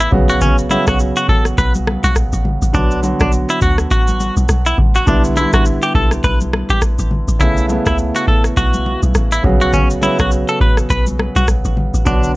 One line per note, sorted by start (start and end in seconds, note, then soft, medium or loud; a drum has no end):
0.00 0.11 C#3 medium
0.00 0.14 A3 medium
0.00 0.13 B3 medium
0.00 0.15 E4 medium
0.00 0.11 E4 medium
0.00 shaker medium
0.11 0.77 B1 loud
0.11 0.67 C#3 medium
0.11 0.68 F#3 medium
0.11 0.68 B3 medium
0.11 0.69 F#4 medium
0.11 kick loud
0.11 high conga medium
0.11 low conga medium
0.29 0.40 F#4 medium
0.29 shaker soft
0.41 0.56 C#4 loud
0.41 kick loud
0.41 low conga medium
0.41 shaker medium
0.58 shaker medium
0.69 1.81 C#3 medium
0.69 1.82 F#3 medium
0.69 1.82 B3 medium
0.69 0.85 E4 medium
0.69 1.83 F#4 medium
0.69 high conga medium
0.69 shaker medium
0.87 1.13 B1 medium
0.87 0.98 F#4 medium
0.87 kick medium
0.87 cross-stick loud
0.87 shaker medium
0.99 shaker medium
1.16 1.27 F#4 medium
1.16 shaker medium
1.29 1.54 A1 medium
1.29 1.43 A4 medium
1.29 kick medium
1.45 cross-stick medium
1.45 shaker soft
1.58 1.98 B1 loud
1.58 1.72 B4 medium
1.58 kick medium
1.58 shaker medium
1.75 high conga medium
1.75 shaker medium
1.87 cross-stick loud
1.87 high conga medium
2.04 2.29 B1 medium
2.04 2.14 F#4 medium
2.04 high conga medium
2.04 shaker medium
2.16 kick medium
2.16 cross-stick loud
2.16 shaker medium
2.33 2.58 A1 medium
2.33 shaker medium
2.45 high conga medium
2.45 low conga medium
2.62 2.73 A1 medium
2.62 shaker soft
2.73 3.14 B1 loud
2.73 3.01 D3 medium
2.73 3.01 F#3 medium
2.73 3.02 B3 medium
2.73 2.99 D4 medium
2.73 3.03 F#4 medium
2.73 kick loud
2.73 low conga medium
2.73 shaker medium
2.91 shaker medium
3.02 4.14 D3 medium
3.02 4.15 F#3 medium
3.02 4.15 B3 medium
3.02 4.16 F#4 medium
3.02 high conga medium
3.02 shaker medium
3.20 3.46 B1 loud
3.20 3.31 D4 medium
3.20 kick medium
3.20 cross-stick loud
3.20 shaker soft
3.32 shaker medium
3.49 3.60 E4 medium
3.49 shaker medium
3.61 3.87 D2 medium
3.61 3.76 F#4 medium
3.61 kick medium
3.61 shaker medium
3.78 cross-stick medium
3.78 shaker soft
3.91 4.31 A1 loud
3.91 4.34 F#4 medium
3.91 kick medium
3.91 shaker medium
4.08 high conga medium
4.08 shaker medium
4.20 high conga medium
4.20 shaker soft
4.37 4.47 B1 medium
4.37 high conga medium
4.37 shaker soft
4.49 4.74 B1 loud
4.49 cross-stick loud
4.49 shaker medium
4.66 4.77 E4 medium
4.66 shaker medium
4.78 5.03 A1 medium
4.78 kick loud
4.78 high conga medium
4.78 low conga medium
4.95 5.06 F#4 medium
4.95 shaker soft
5.06 5.47 B1 loud
5.06 5.34 D3 medium
5.06 5.34 G3 medium
5.06 5.35 B3 medium
5.06 5.22 D4 loud
5.06 5.36 E4 medium
5.06 kick loud
5.06 low conga medium
5.06 shaker medium
5.24 shaker medium
5.35 6.47 D3 medium
5.35 6.48 G3 medium
5.35 6.48 B3 medium
5.35 5.51 E4 medium
5.35 6.49 E4 medium
5.35 high conga medium
5.35 shaker medium
5.53 5.79 A1 medium
5.53 5.64 F#4 medium
5.53 kick medium
5.53 cross-stick loud
5.53 shaker soft
5.65 shaker medium
5.82 5.93 G4 medium
5.82 shaker medium
5.95 6.20 B1 medium
5.95 6.09 A4 medium
5.95 kick medium
6.11 cross-stick medium
6.11 shaker soft
6.24 6.64 B1 medium
6.24 6.38 B4 medium
6.24 kick medium
6.24 shaker medium
6.41 high conga medium
6.41 shaker medium
6.53 cross-stick loud
6.53 high conga medium
6.70 6.95 A1 medium
6.70 6.80 G4 medium
6.70 high conga medium
6.70 shaker soft
6.82 kick medium
6.82 cross-stick loud
6.82 shaker medium
6.99 7.24 A1 medium
6.99 shaker medium
7.11 high conga medium
7.11 low conga medium
7.28 7.42 A1 medium
7.28 shaker soft
7.39 7.80 B1 loud
7.39 7.67 C#3 medium
7.39 7.67 A3 medium
7.39 7.68 B3 medium
7.39 7.65 E4 loud
7.39 7.69 E4 medium
7.39 kick loud
7.39 low conga medium
7.39 shaker medium
7.57 shaker medium
7.68 8.80 C#3 medium
7.68 8.81 A3 medium
7.68 8.81 B3 medium
7.68 8.82 E4 medium
7.68 high conga medium
7.68 shaker medium
7.86 8.12 C#2 medium
7.86 7.97 E4 medium
7.86 kick medium
7.86 cross-stick loud
7.86 shaker medium
7.98 shaker medium
8.15 8.26 F#4 medium
8.15 shaker medium
8.28 8.53 A1 medium
8.28 8.42 A4 medium
8.28 kick medium
8.44 cross-stick medium
8.44 shaker soft
8.57 8.97 B1 medium
8.57 9.00 F#4 medium
8.57 kick medium
8.57 shaker medium
8.74 high conga medium
8.74 shaker medium
8.86 high conga medium
9.03 9.13 B1 medium
9.03 high conga medium
9.03 shaker medium
9.15 9.40 A1 loud
9.15 cross-stick loud
9.15 shaker medium
9.32 9.43 E4 medium
9.32 shaker medium
9.43 10.09 B1 loud
9.43 9.99 C#3 medium
9.43 10.00 F#3 medium
9.43 10.00 B3 medium
9.43 10.01 F#4 medium
9.43 kick loud
9.43 high conga medium
9.43 low conga medium
9.61 9.72 F#4 medium
9.61 shaker soft
9.73 9.88 C#4 medium
9.73 kick loud
9.73 low conga medium
9.73 shaker medium
9.90 shaker medium
10.01 11.13 C#3 medium
10.01 11.14 F#3 medium
10.01 11.14 B3 medium
10.01 10.17 E4 medium
10.01 11.15 F#4 medium
10.01 high conga medium
10.01 shaker medium
10.19 10.45 B1 medium
10.19 10.30 F#4 medium
10.19 kick medium
10.19 cross-stick loud
10.19 shaker soft
10.31 shaker medium
10.48 10.59 A4 medium
10.48 shaker medium
10.61 10.86 A1 medium
10.61 10.75 B4 medium
10.61 kick medium
10.77 cross-stick medium
10.77 shaker soft
10.90 11.30 B1 loud
10.90 11.04 B4 medium
10.90 kick medium
10.90 shaker medium
11.07 high conga medium
11.07 shaker medium
11.19 cross-stick loud
11.19 high conga medium
11.36 11.61 B1 medium
11.36 11.47 F#4 medium
11.36 high conga medium
11.36 shaker soft
11.48 kick medium
11.48 cross-stick medium
11.48 shaker medium
11.65 11.90 A1 medium
11.65 shaker medium
11.77 high conga medium
11.77 low conga medium
11.94 12.05 A1 medium
11.94 shaker soft
12.05 12.36 B1 loud
12.05 12.33 D3 medium
12.05 12.34 F#3 medium
12.05 12.34 B3 medium
12.05 12.31 D4 medium
12.05 12.35 F#4 medium
12.05 kick loud
12.05 low conga medium
12.05 shaker medium
12.23 shaker medium